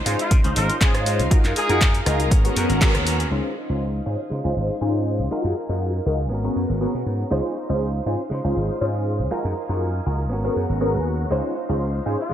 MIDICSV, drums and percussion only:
0, 0, Header, 1, 2, 480
1, 0, Start_track
1, 0, Key_signature, -5, "major"
1, 0, Tempo, 500000
1, 1260, Time_signature, 4, 2, 24, 8
1, 11843, End_track
2, 0, Start_track
2, 0, Title_t, "Drums"
2, 58, Note_on_c, 9, 46, 88
2, 154, Note_off_c, 9, 46, 0
2, 186, Note_on_c, 9, 42, 40
2, 282, Note_off_c, 9, 42, 0
2, 298, Note_on_c, 9, 42, 96
2, 299, Note_on_c, 9, 36, 111
2, 394, Note_off_c, 9, 42, 0
2, 395, Note_off_c, 9, 36, 0
2, 426, Note_on_c, 9, 42, 38
2, 522, Note_off_c, 9, 42, 0
2, 539, Note_on_c, 9, 46, 101
2, 635, Note_off_c, 9, 46, 0
2, 668, Note_on_c, 9, 42, 41
2, 764, Note_off_c, 9, 42, 0
2, 779, Note_on_c, 9, 36, 115
2, 780, Note_on_c, 9, 42, 91
2, 781, Note_on_c, 9, 39, 113
2, 875, Note_off_c, 9, 36, 0
2, 876, Note_off_c, 9, 42, 0
2, 877, Note_off_c, 9, 39, 0
2, 908, Note_on_c, 9, 37, 82
2, 908, Note_on_c, 9, 42, 41
2, 1004, Note_off_c, 9, 37, 0
2, 1004, Note_off_c, 9, 42, 0
2, 1021, Note_on_c, 9, 46, 88
2, 1117, Note_off_c, 9, 46, 0
2, 1147, Note_on_c, 9, 42, 39
2, 1243, Note_off_c, 9, 42, 0
2, 1260, Note_on_c, 9, 36, 116
2, 1260, Note_on_c, 9, 42, 97
2, 1356, Note_off_c, 9, 36, 0
2, 1356, Note_off_c, 9, 42, 0
2, 1388, Note_on_c, 9, 42, 40
2, 1390, Note_on_c, 9, 39, 38
2, 1484, Note_off_c, 9, 42, 0
2, 1486, Note_off_c, 9, 39, 0
2, 1499, Note_on_c, 9, 46, 97
2, 1595, Note_off_c, 9, 46, 0
2, 1627, Note_on_c, 9, 42, 40
2, 1723, Note_off_c, 9, 42, 0
2, 1740, Note_on_c, 9, 36, 108
2, 1740, Note_on_c, 9, 42, 99
2, 1742, Note_on_c, 9, 39, 123
2, 1836, Note_off_c, 9, 36, 0
2, 1836, Note_off_c, 9, 42, 0
2, 1838, Note_off_c, 9, 39, 0
2, 1867, Note_on_c, 9, 42, 42
2, 1963, Note_off_c, 9, 42, 0
2, 1981, Note_on_c, 9, 37, 78
2, 1981, Note_on_c, 9, 46, 86
2, 2077, Note_off_c, 9, 37, 0
2, 2077, Note_off_c, 9, 46, 0
2, 2109, Note_on_c, 9, 42, 40
2, 2205, Note_off_c, 9, 42, 0
2, 2220, Note_on_c, 9, 36, 107
2, 2222, Note_on_c, 9, 42, 99
2, 2316, Note_off_c, 9, 36, 0
2, 2318, Note_off_c, 9, 42, 0
2, 2351, Note_on_c, 9, 42, 41
2, 2447, Note_off_c, 9, 42, 0
2, 2462, Note_on_c, 9, 46, 105
2, 2558, Note_off_c, 9, 46, 0
2, 2589, Note_on_c, 9, 42, 42
2, 2685, Note_off_c, 9, 42, 0
2, 2701, Note_on_c, 9, 36, 112
2, 2702, Note_on_c, 9, 42, 92
2, 2704, Note_on_c, 9, 39, 115
2, 2797, Note_off_c, 9, 36, 0
2, 2798, Note_off_c, 9, 42, 0
2, 2800, Note_off_c, 9, 39, 0
2, 2829, Note_on_c, 9, 37, 75
2, 2829, Note_on_c, 9, 42, 41
2, 2925, Note_off_c, 9, 37, 0
2, 2925, Note_off_c, 9, 42, 0
2, 2943, Note_on_c, 9, 46, 88
2, 3039, Note_off_c, 9, 46, 0
2, 3072, Note_on_c, 9, 42, 42
2, 3168, Note_off_c, 9, 42, 0
2, 11843, End_track
0, 0, End_of_file